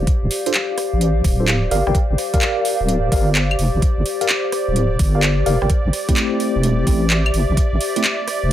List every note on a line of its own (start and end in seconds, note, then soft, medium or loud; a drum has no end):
0.00 8.53 G4 medium
0.00 8.53 C5 medium
0.00 8.53 D5 medium
0.00 5.70 F5 medium
0.07 kick loud
0.07 closed hi-hat medium
0.23 0.29 D1 loud
0.31 open hi-hat loud
0.46 0.52 D4 medium
0.46 0.52 F4 medium
0.46 0.52 A4 medium
0.46 0.52 C5 medium
0.46 closed hi-hat medium
0.54 clap loud
0.54 closed hi-hat medium
0.78 cross-stick medium
0.78 open hi-hat medium
0.93 1.21 A1 medium
1.01 closed hi-hat medium
1.24 1.68 D1 medium
1.24 kick loud
1.24 open hi-hat loud
1.40 1.46 D4 medium
1.40 1.46 F4 medium
1.40 1.46 A4 medium
1.40 1.46 C5 medium
1.48 clap loud
1.48 closed hi-hat medium
1.71 1.83 G1 medium
1.71 1.83 G4 medium
1.71 1.83 A#4 medium
1.71 1.83 D5 medium
1.71 1.83 F5 medium
1.71 open hi-hat medium
1.87 1.93 G1 medium
1.87 1.97 G4 medium
1.87 1.97 A#4 medium
1.87 1.97 D5 medium
1.87 1.97 G5 medium
1.87 cross-stick medium
1.95 kick loud
1.95 closed hi-hat medium
2.10 2.16 G1 medium
2.18 cross-stick soft
2.18 open hi-hat loud
2.34 3.10 G4 medium
2.34 3.10 A#4 medium
2.34 3.10 D5 medium
2.34 3.10 F5 loud
2.34 kick loud
2.34 closed hi-hat medium
2.42 clap loud
2.42 closed hi-hat medium
2.65 open hi-hat medium
2.80 3.09 D1 medium
2.89 closed hi-hat medium
3.12 3.56 G1 medium
3.12 3.29 G4 medium
3.12 3.29 A#4 medium
3.12 3.29 D5 medium
3.12 3.29 F5 medium
3.12 kick loud
3.12 open hi-hat loud
3.35 clap loud
3.35 closed hi-hat medium
3.51 claves medium
3.59 3.71 F1 medium
3.59 open hi-hat medium
3.74 3.80 G1 medium
3.82 kick loud
3.82 closed hi-hat medium
3.98 4.04 G1 loud
4.06 open hi-hat medium
4.21 4.27 G4 medium
4.21 4.27 A#4 medium
4.21 4.27 D5 medium
4.21 4.27 F5 medium
4.21 closed hi-hat medium
4.29 clap loud
4.29 closed hi-hat medium
4.52 cross-stick soft
4.52 open hi-hat medium
4.68 4.96 D1 medium
4.76 closed hi-hat medium
4.99 5.43 G1 medium
4.99 kick loud
4.99 open hi-hat loud
5.15 5.21 G4 medium
5.15 5.21 A#4 medium
5.15 5.21 D5 medium
5.15 5.21 F5 medium
5.23 clap loud
5.23 closed hi-hat medium
5.46 5.58 F1 medium
5.46 5.58 G4 medium
5.46 5.58 A#4 medium
5.46 5.58 D5 medium
5.46 5.58 F5 medium
5.46 open hi-hat medium
5.62 5.68 G1 medium
5.62 5.69 G4 medium
5.62 5.69 A#4 medium
5.62 5.69 D5 medium
5.62 5.69 G5 medium
5.62 cross-stick medium
5.70 kick loud
5.70 closed hi-hat medium
5.85 5.91 A1 loud
5.93 cross-stick soft
5.93 open hi-hat loud
6.09 6.85 A3 medium
6.09 6.85 C4 medium
6.09 6.85 E4 medium
6.09 6.85 G4 loud
6.09 kick loud
6.09 closed hi-hat medium
6.15 8.53 E5 medium
6.15 clap loud
6.15 closed hi-hat medium
6.40 open hi-hat medium
6.56 6.84 E1 medium
6.63 closed hi-hat medium
6.87 7.31 A1 medium
6.87 7.04 A3 medium
6.87 7.04 C4 medium
6.87 7.04 E4 medium
6.87 7.04 G4 medium
6.87 kick loud
6.87 open hi-hat loud
7.10 clap loud
7.10 closed hi-hat medium
7.26 claves medium
7.34 7.46 G1 medium
7.34 open hi-hat medium
7.49 7.55 A1 medium
7.57 kick loud
7.57 closed hi-hat medium
7.73 7.79 A1 loud
7.81 open hi-hat loud
7.96 8.02 A3 medium
7.96 8.02 C4 medium
7.96 8.02 E4 medium
7.96 8.02 G4 medium
7.96 closed hi-hat medium
8.04 clap loud
8.04 closed hi-hat medium
8.28 cross-stick soft
8.28 open hi-hat medium
8.43 8.53 E1 medium